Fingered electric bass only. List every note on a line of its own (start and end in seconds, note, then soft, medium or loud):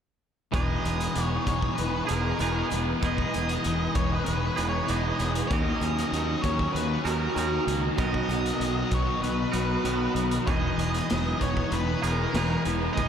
0.53 0.75 E1 medium
0.86 1.07 E1 medium
1.16 1.37 E1 medium
1.48 1.69 E1 medium
1.79 2.00 E1 medium
2.10 2.31 E1 medium
2.41 2.62 E1 medium
2.72 2.93 E1 medium
3.03 3.24 E1 medium
3.35 3.56 E1 medium
3.66 3.87 E1 medium
3.96 4.17 E1 medium
4.28 4.49 E1 medium
4.59 4.80 E1 medium
4.90 5.11 E1 medium
5.20 5.41 E1 medium
5.50 5.72 D#2 medium
5.81 6.03 D#2 medium
6.12 6.34 D#2 medium
6.44 6.66 D#2 medium
6.75 6.96 D#2 medium
7.05 7.27 D#2 medium
7.36 7.58 D#2 medium
7.67 7.89 C#2 medium
7.98 8.20 B1 medium
8.28 8.51 B1 medium
8.60 8.82 B1 medium
8.92 9.14 B1 medium
9.23 9.45 B1 medium
9.54 9.76 B1 medium
9.84 10.06 B1 medium
10.15 10.37 B1 medium
10.48 10.69 E1 medium
10.78 11.00 E1 medium
11.12 11.33 E1 medium
11.42 11.63 E1 medium
11.72 11.94 E1 medium
12.04 12.25 E1 medium
12.34 12.56 E1 medium
12.66 12.88 E1 medium
12.98 13.08 E1 medium